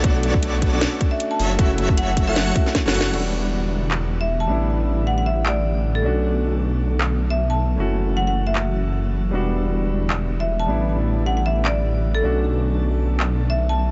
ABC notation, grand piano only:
X:1
M:4/4
L:1/16
Q:"Swing 16ths" 1/4=155
K:Bm
V:1 name="Grand piano"
[A,DF]6- [A,DF] [A,CDF]8- [A,CDF] | [A,CEF]6- [A,CEF] [A,CEA]3 [A,CEF]4 [A,CEF]2 | [G,B,DF]12- [G,B,DF]2 [G,B,DE]2- | [G,B,DE]12- [G,B,DE]2 [A,CDF]2- |
[A,CDF]16 | [A,CEF]16 | [G,B,DF]12- [G,B,DF]2 [G,B,DE]2- | [G,B,DE]12- [G,B,DE]2 [A,CDF]2- |
[A,CDF]16 |]